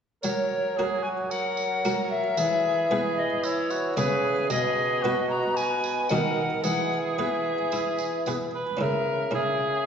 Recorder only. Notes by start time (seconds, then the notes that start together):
0.22 C#5
1.02 G#5
1.30 F#5
2.10 E5
3.18 D#5
3.45 C#5
3.98 B4
4.50 D#5
5.29 A#5
5.57 G#5
6.09 F#5
6.63 F#5
7.18 E5
8.82 E5
9.34 E5